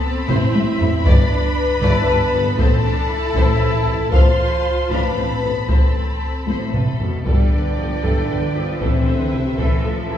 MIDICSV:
0, 0, Header, 1, 9, 480
1, 0, Start_track
1, 0, Key_signature, 0, "minor"
1, 0, Tempo, 511945
1, 993, Time_signature, 6, 3, 24, 8
1, 3868, Tempo, 519481
1, 9460, End_track
2, 0, Start_track
2, 0, Title_t, "Violin section"
2, 0, Program_c, 0, 48
2, 0, Note_on_c, 0, 81, 68
2, 253, Note_off_c, 0, 81, 0
2, 266, Note_on_c, 0, 76, 71
2, 990, Note_on_c, 0, 83, 90
2, 992, Note_off_c, 0, 76, 0
2, 2396, Note_off_c, 0, 83, 0
2, 2426, Note_on_c, 0, 81, 86
2, 3839, Note_off_c, 0, 81, 0
2, 3862, Note_on_c, 0, 84, 75
2, 4570, Note_off_c, 0, 84, 0
2, 4596, Note_on_c, 0, 83, 71
2, 5300, Note_off_c, 0, 83, 0
2, 5308, Note_on_c, 0, 81, 53
2, 6031, Note_off_c, 0, 81, 0
2, 6036, Note_on_c, 0, 69, 50
2, 6732, Note_off_c, 0, 69, 0
2, 6770, Note_on_c, 0, 74, 62
2, 8171, Note_off_c, 0, 74, 0
2, 8203, Note_on_c, 0, 72, 56
2, 8905, Note_on_c, 0, 69, 53
2, 8911, Note_off_c, 0, 72, 0
2, 9460, Note_off_c, 0, 69, 0
2, 9460, End_track
3, 0, Start_track
3, 0, Title_t, "Violin section"
3, 0, Program_c, 1, 48
3, 0, Note_on_c, 1, 83, 63
3, 264, Note_on_c, 1, 72, 66
3, 490, Note_off_c, 1, 72, 0
3, 506, Note_on_c, 1, 71, 59
3, 581, Note_off_c, 1, 71, 0
3, 750, Note_on_c, 1, 69, 49
3, 825, Note_off_c, 1, 69, 0
3, 989, Note_on_c, 1, 74, 74
3, 1214, Note_off_c, 1, 74, 0
3, 1668, Note_off_c, 1, 83, 0
3, 1713, Note_on_c, 1, 74, 76
3, 1714, Note_on_c, 1, 81, 61
3, 1933, Note_off_c, 1, 74, 0
3, 1954, Note_on_c, 1, 71, 55
3, 2029, Note_off_c, 1, 71, 0
3, 2189, Note_on_c, 1, 69, 54
3, 2264, Note_off_c, 1, 69, 0
3, 2422, Note_on_c, 1, 72, 66
3, 2422, Note_on_c, 1, 83, 63
3, 2428, Note_off_c, 1, 81, 0
3, 2646, Note_off_c, 1, 72, 0
3, 3144, Note_on_c, 1, 72, 67
3, 3367, Note_off_c, 1, 72, 0
3, 3380, Note_on_c, 1, 71, 62
3, 3455, Note_off_c, 1, 71, 0
3, 3631, Note_on_c, 1, 69, 43
3, 3706, Note_off_c, 1, 69, 0
3, 3837, Note_off_c, 1, 83, 0
3, 3869, Note_on_c, 1, 81, 55
3, 3870, Note_on_c, 1, 77, 68
3, 4092, Note_off_c, 1, 77, 0
3, 4590, Note_on_c, 1, 77, 56
3, 4813, Note_off_c, 1, 77, 0
3, 4830, Note_on_c, 1, 72, 44
3, 4904, Note_off_c, 1, 72, 0
3, 5083, Note_on_c, 1, 69, 35
3, 5157, Note_off_c, 1, 69, 0
3, 5281, Note_off_c, 1, 81, 0
3, 5314, Note_on_c, 1, 72, 44
3, 5316, Note_on_c, 1, 83, 45
3, 5536, Note_off_c, 1, 72, 0
3, 6036, Note_on_c, 1, 72, 46
3, 6261, Note_off_c, 1, 72, 0
3, 6275, Note_on_c, 1, 71, 33
3, 6349, Note_off_c, 1, 71, 0
3, 6518, Note_on_c, 1, 69, 27
3, 6554, Note_off_c, 1, 83, 0
3, 6592, Note_off_c, 1, 69, 0
3, 6759, Note_on_c, 1, 71, 45
3, 6760, Note_on_c, 1, 79, 43
3, 8157, Note_off_c, 1, 79, 0
3, 8198, Note_on_c, 1, 76, 45
3, 9460, Note_off_c, 1, 71, 0
3, 9460, Note_off_c, 1, 76, 0
3, 9460, End_track
4, 0, Start_track
4, 0, Title_t, "French horn section"
4, 0, Program_c, 2, 60
4, 0, Note_on_c, 2, 69, 81
4, 114, Note_off_c, 2, 69, 0
4, 274, Note_on_c, 2, 64, 77
4, 982, Note_off_c, 2, 64, 0
4, 986, Note_on_c, 2, 71, 107
4, 2394, Note_off_c, 2, 71, 0
4, 2419, Note_on_c, 2, 69, 95
4, 3835, Note_off_c, 2, 69, 0
4, 3860, Note_on_c, 2, 72, 82
4, 4584, Note_off_c, 2, 72, 0
4, 4587, Note_on_c, 2, 71, 67
4, 5310, Note_off_c, 2, 71, 0
4, 5314, Note_on_c, 2, 69, 52
4, 6020, Note_off_c, 2, 69, 0
4, 6026, Note_on_c, 2, 57, 52
4, 6727, Note_off_c, 2, 57, 0
4, 6756, Note_on_c, 2, 62, 73
4, 8036, Note_off_c, 2, 62, 0
4, 8193, Note_on_c, 2, 60, 69
4, 8891, Note_off_c, 2, 60, 0
4, 8894, Note_on_c, 2, 57, 59
4, 9460, Note_off_c, 2, 57, 0
4, 9460, End_track
5, 0, Start_track
5, 0, Title_t, "Viola section"
5, 0, Program_c, 3, 48
5, 23, Note_on_c, 3, 60, 68
5, 987, Note_on_c, 3, 62, 71
5, 990, Note_off_c, 3, 60, 0
5, 1692, Note_off_c, 3, 62, 0
5, 1699, Note_on_c, 3, 64, 62
5, 1939, Note_on_c, 3, 62, 59
5, 1942, Note_off_c, 3, 64, 0
5, 2181, Note_on_c, 3, 59, 64
5, 2182, Note_off_c, 3, 62, 0
5, 2418, Note_off_c, 3, 59, 0
5, 2420, Note_on_c, 3, 60, 63
5, 2660, Note_on_c, 3, 62, 64
5, 2662, Note_off_c, 3, 60, 0
5, 2897, Note_off_c, 3, 62, 0
5, 2905, Note_on_c, 3, 64, 74
5, 3867, Note_on_c, 3, 65, 68
5, 3868, Note_off_c, 3, 64, 0
5, 4573, Note_off_c, 3, 65, 0
5, 4586, Note_on_c, 3, 62, 55
5, 4827, Note_on_c, 3, 60, 42
5, 4828, Note_off_c, 3, 62, 0
5, 5064, Note_on_c, 3, 59, 41
5, 5069, Note_off_c, 3, 60, 0
5, 5303, Note_off_c, 3, 59, 0
5, 5304, Note_on_c, 3, 60, 47
5, 6395, Note_off_c, 3, 60, 0
5, 6761, Note_on_c, 3, 69, 49
5, 6988, Note_off_c, 3, 69, 0
5, 7003, Note_on_c, 3, 69, 33
5, 7004, Note_off_c, 3, 69, 0
5, 7004, Note_on_c, 3, 69, 33
5, 7078, Note_off_c, 3, 69, 0
5, 7241, Note_on_c, 3, 67, 38
5, 7242, Note_on_c, 3, 69, 36
5, 7315, Note_off_c, 3, 67, 0
5, 7316, Note_off_c, 3, 69, 0
5, 7482, Note_on_c, 3, 69, 50
5, 7485, Note_off_c, 3, 69, 0
5, 7485, Note_on_c, 3, 69, 45
5, 7706, Note_off_c, 3, 69, 0
5, 7723, Note_on_c, 3, 69, 41
5, 7725, Note_off_c, 3, 69, 0
5, 7725, Note_on_c, 3, 69, 38
5, 7799, Note_off_c, 3, 69, 0
5, 7961, Note_on_c, 3, 67, 37
5, 7964, Note_on_c, 3, 69, 41
5, 8034, Note_off_c, 3, 67, 0
5, 8037, Note_off_c, 3, 69, 0
5, 8197, Note_on_c, 3, 69, 49
5, 8198, Note_off_c, 3, 69, 0
5, 8198, Note_on_c, 3, 69, 43
5, 8418, Note_off_c, 3, 69, 0
5, 8432, Note_on_c, 3, 69, 37
5, 8434, Note_off_c, 3, 69, 0
5, 8434, Note_on_c, 3, 69, 36
5, 8508, Note_off_c, 3, 69, 0
5, 8662, Note_on_c, 3, 64, 43
5, 8663, Note_on_c, 3, 69, 35
5, 8736, Note_off_c, 3, 64, 0
5, 8736, Note_off_c, 3, 69, 0
5, 8897, Note_on_c, 3, 69, 53
5, 9125, Note_off_c, 3, 69, 0
5, 9138, Note_on_c, 3, 69, 39
5, 9140, Note_off_c, 3, 69, 0
5, 9140, Note_on_c, 3, 69, 38
5, 9214, Note_off_c, 3, 69, 0
5, 9385, Note_on_c, 3, 64, 46
5, 9388, Note_on_c, 3, 69, 41
5, 9459, Note_off_c, 3, 64, 0
5, 9460, Note_off_c, 3, 69, 0
5, 9460, End_track
6, 0, Start_track
6, 0, Title_t, "Cello section"
6, 0, Program_c, 4, 48
6, 259, Note_on_c, 4, 45, 78
6, 334, Note_off_c, 4, 45, 0
6, 503, Note_on_c, 4, 45, 49
6, 578, Note_off_c, 4, 45, 0
6, 748, Note_on_c, 4, 45, 55
6, 823, Note_off_c, 4, 45, 0
6, 992, Note_on_c, 4, 43, 73
6, 1067, Note_off_c, 4, 43, 0
6, 1706, Note_on_c, 4, 43, 80
6, 1781, Note_off_c, 4, 43, 0
6, 1946, Note_on_c, 4, 43, 52
6, 2021, Note_off_c, 4, 43, 0
6, 2190, Note_on_c, 4, 43, 57
6, 2265, Note_off_c, 4, 43, 0
6, 2427, Note_on_c, 4, 45, 70
6, 2502, Note_off_c, 4, 45, 0
6, 3140, Note_on_c, 4, 45, 75
6, 3215, Note_off_c, 4, 45, 0
6, 3378, Note_on_c, 4, 45, 44
6, 3453, Note_off_c, 4, 45, 0
6, 3624, Note_on_c, 4, 45, 52
6, 3699, Note_off_c, 4, 45, 0
6, 3862, Note_on_c, 4, 45, 64
6, 3936, Note_off_c, 4, 45, 0
6, 4585, Note_on_c, 4, 45, 59
6, 4659, Note_off_c, 4, 45, 0
6, 4829, Note_on_c, 4, 45, 36
6, 4903, Note_off_c, 4, 45, 0
6, 5064, Note_on_c, 4, 45, 37
6, 5138, Note_off_c, 4, 45, 0
6, 5302, Note_on_c, 4, 45, 47
6, 5376, Note_off_c, 4, 45, 0
6, 6028, Note_on_c, 4, 45, 42
6, 6256, Note_off_c, 4, 45, 0
6, 6269, Note_on_c, 4, 48, 38
6, 6516, Note_on_c, 4, 47, 39
6, 6518, Note_off_c, 4, 48, 0
6, 6759, Note_off_c, 4, 47, 0
6, 6760, Note_on_c, 4, 55, 48
6, 6987, Note_off_c, 4, 55, 0
6, 6996, Note_on_c, 4, 50, 46
6, 7236, Note_off_c, 4, 50, 0
6, 7237, Note_on_c, 4, 53, 46
6, 7479, Note_on_c, 4, 52, 42
6, 7480, Note_off_c, 4, 53, 0
6, 7717, Note_on_c, 4, 50, 44
6, 7720, Note_off_c, 4, 52, 0
6, 7958, Note_off_c, 4, 50, 0
6, 7958, Note_on_c, 4, 53, 51
6, 8195, Note_on_c, 4, 52, 43
6, 8196, Note_off_c, 4, 53, 0
6, 8428, Note_on_c, 4, 50, 48
6, 8432, Note_off_c, 4, 52, 0
6, 8661, Note_on_c, 4, 48, 44
6, 8667, Note_off_c, 4, 50, 0
6, 8903, Note_off_c, 4, 48, 0
6, 8905, Note_on_c, 4, 52, 49
6, 9141, Note_off_c, 4, 52, 0
6, 9144, Note_on_c, 4, 53, 48
6, 9383, Note_on_c, 4, 52, 50
6, 9386, Note_off_c, 4, 53, 0
6, 9460, Note_off_c, 4, 52, 0
6, 9460, End_track
7, 0, Start_track
7, 0, Title_t, "Double bass section"
7, 0, Program_c, 5, 48
7, 255, Note_on_c, 5, 33, 81
7, 330, Note_off_c, 5, 33, 0
7, 501, Note_on_c, 5, 33, 47
7, 576, Note_off_c, 5, 33, 0
7, 747, Note_on_c, 5, 33, 53
7, 822, Note_off_c, 5, 33, 0
7, 989, Note_on_c, 5, 31, 82
7, 1064, Note_off_c, 5, 31, 0
7, 1704, Note_on_c, 5, 31, 77
7, 1779, Note_off_c, 5, 31, 0
7, 1942, Note_on_c, 5, 31, 50
7, 2017, Note_off_c, 5, 31, 0
7, 2182, Note_on_c, 5, 31, 53
7, 2257, Note_off_c, 5, 31, 0
7, 2421, Note_on_c, 5, 33, 84
7, 2496, Note_off_c, 5, 33, 0
7, 3136, Note_on_c, 5, 33, 77
7, 3211, Note_off_c, 5, 33, 0
7, 3381, Note_on_c, 5, 33, 50
7, 3456, Note_off_c, 5, 33, 0
7, 3620, Note_on_c, 5, 33, 51
7, 3695, Note_off_c, 5, 33, 0
7, 3853, Note_on_c, 5, 33, 73
7, 3927, Note_off_c, 5, 33, 0
7, 4582, Note_on_c, 5, 33, 61
7, 4656, Note_off_c, 5, 33, 0
7, 4826, Note_on_c, 5, 33, 36
7, 4900, Note_off_c, 5, 33, 0
7, 5065, Note_on_c, 5, 33, 37
7, 5139, Note_off_c, 5, 33, 0
7, 5307, Note_on_c, 5, 33, 56
7, 5381, Note_off_c, 5, 33, 0
7, 6024, Note_on_c, 5, 33, 46
7, 6098, Note_off_c, 5, 33, 0
7, 6270, Note_on_c, 5, 33, 30
7, 6344, Note_off_c, 5, 33, 0
7, 6513, Note_on_c, 5, 33, 34
7, 6587, Note_off_c, 5, 33, 0
7, 6757, Note_on_c, 5, 43, 55
7, 6831, Note_off_c, 5, 43, 0
7, 7001, Note_on_c, 5, 43, 38
7, 7075, Note_off_c, 5, 43, 0
7, 7245, Note_on_c, 5, 43, 32
7, 7319, Note_off_c, 5, 43, 0
7, 7474, Note_on_c, 5, 43, 58
7, 7548, Note_off_c, 5, 43, 0
7, 7709, Note_on_c, 5, 43, 33
7, 7783, Note_off_c, 5, 43, 0
7, 7950, Note_on_c, 5, 43, 39
7, 8023, Note_off_c, 5, 43, 0
7, 8194, Note_on_c, 5, 33, 57
7, 8268, Note_off_c, 5, 33, 0
7, 8436, Note_on_c, 5, 33, 38
7, 8510, Note_off_c, 5, 33, 0
7, 8669, Note_on_c, 5, 33, 36
7, 8743, Note_off_c, 5, 33, 0
7, 8897, Note_on_c, 5, 33, 56
7, 8971, Note_off_c, 5, 33, 0
7, 9144, Note_on_c, 5, 33, 41
7, 9218, Note_off_c, 5, 33, 0
7, 9388, Note_on_c, 5, 33, 39
7, 9460, Note_off_c, 5, 33, 0
7, 9460, End_track
8, 0, Start_track
8, 0, Title_t, "Tuba"
8, 0, Program_c, 6, 58
8, 267, Note_on_c, 6, 33, 75
8, 364, Note_off_c, 6, 33, 0
8, 508, Note_on_c, 6, 33, 53
8, 605, Note_off_c, 6, 33, 0
8, 746, Note_on_c, 6, 33, 58
8, 843, Note_off_c, 6, 33, 0
8, 991, Note_on_c, 6, 31, 77
8, 1087, Note_off_c, 6, 31, 0
8, 1709, Note_on_c, 6, 31, 83
8, 1804, Note_off_c, 6, 31, 0
8, 1945, Note_on_c, 6, 31, 54
8, 2041, Note_off_c, 6, 31, 0
8, 2182, Note_on_c, 6, 31, 56
8, 2279, Note_off_c, 6, 31, 0
8, 2424, Note_on_c, 6, 33, 69
8, 2520, Note_off_c, 6, 33, 0
8, 3141, Note_on_c, 6, 33, 74
8, 3238, Note_off_c, 6, 33, 0
8, 3384, Note_on_c, 6, 33, 48
8, 3481, Note_off_c, 6, 33, 0
8, 3626, Note_on_c, 6, 33, 47
8, 3723, Note_off_c, 6, 33, 0
8, 3871, Note_on_c, 6, 33, 63
8, 3966, Note_off_c, 6, 33, 0
8, 4591, Note_on_c, 6, 33, 61
8, 4686, Note_off_c, 6, 33, 0
8, 4826, Note_on_c, 6, 33, 38
8, 4923, Note_off_c, 6, 33, 0
8, 5076, Note_on_c, 6, 33, 40
8, 5171, Note_off_c, 6, 33, 0
8, 5312, Note_on_c, 6, 33, 48
8, 5408, Note_off_c, 6, 33, 0
8, 6033, Note_on_c, 6, 33, 50
8, 6130, Note_off_c, 6, 33, 0
8, 6276, Note_on_c, 6, 33, 29
8, 6375, Note_off_c, 6, 33, 0
8, 6521, Note_on_c, 6, 33, 32
8, 6619, Note_off_c, 6, 33, 0
8, 6763, Note_on_c, 6, 31, 53
8, 6860, Note_off_c, 6, 31, 0
8, 7003, Note_on_c, 6, 31, 37
8, 7099, Note_off_c, 6, 31, 0
8, 7244, Note_on_c, 6, 31, 36
8, 7339, Note_off_c, 6, 31, 0
8, 7482, Note_on_c, 6, 31, 56
8, 7577, Note_off_c, 6, 31, 0
8, 7719, Note_on_c, 6, 31, 37
8, 7815, Note_off_c, 6, 31, 0
8, 7963, Note_on_c, 6, 31, 40
8, 8057, Note_off_c, 6, 31, 0
8, 8197, Note_on_c, 6, 33, 54
8, 8291, Note_off_c, 6, 33, 0
8, 8432, Note_on_c, 6, 33, 40
8, 8527, Note_off_c, 6, 33, 0
8, 8669, Note_on_c, 6, 33, 40
8, 8764, Note_off_c, 6, 33, 0
8, 8909, Note_on_c, 6, 33, 56
8, 9004, Note_off_c, 6, 33, 0
8, 9152, Note_on_c, 6, 33, 39
8, 9247, Note_off_c, 6, 33, 0
8, 9395, Note_on_c, 6, 33, 39
8, 9460, Note_off_c, 6, 33, 0
8, 9460, End_track
9, 0, Start_track
9, 0, Title_t, "Taiko and cinematic ensemble drums"
9, 270, Note_on_c, 9, 45, 75
9, 363, Note_off_c, 9, 45, 0
9, 512, Note_on_c, 9, 48, 76
9, 606, Note_off_c, 9, 48, 0
9, 754, Note_on_c, 9, 43, 82
9, 848, Note_off_c, 9, 43, 0
9, 992, Note_on_c, 9, 41, 91
9, 1086, Note_off_c, 9, 41, 0
9, 1708, Note_on_c, 9, 41, 74
9, 1802, Note_off_c, 9, 41, 0
9, 2422, Note_on_c, 9, 41, 81
9, 2516, Note_off_c, 9, 41, 0
9, 3143, Note_on_c, 9, 41, 72
9, 3237, Note_off_c, 9, 41, 0
9, 3868, Note_on_c, 9, 41, 82
9, 3960, Note_off_c, 9, 41, 0
9, 4586, Note_on_c, 9, 41, 64
9, 4678, Note_off_c, 9, 41, 0
9, 5311, Note_on_c, 9, 41, 75
9, 5404, Note_off_c, 9, 41, 0
9, 6033, Note_on_c, 9, 48, 59
9, 6125, Note_off_c, 9, 48, 0
9, 6277, Note_on_c, 9, 45, 62
9, 6369, Note_off_c, 9, 45, 0
9, 6523, Note_on_c, 9, 43, 68
9, 6615, Note_off_c, 9, 43, 0
9, 6764, Note_on_c, 9, 41, 71
9, 6856, Note_off_c, 9, 41, 0
9, 7481, Note_on_c, 9, 41, 62
9, 7573, Note_off_c, 9, 41, 0
9, 8196, Note_on_c, 9, 41, 70
9, 8288, Note_off_c, 9, 41, 0
9, 8908, Note_on_c, 9, 41, 66
9, 9001, Note_off_c, 9, 41, 0
9, 9460, End_track
0, 0, End_of_file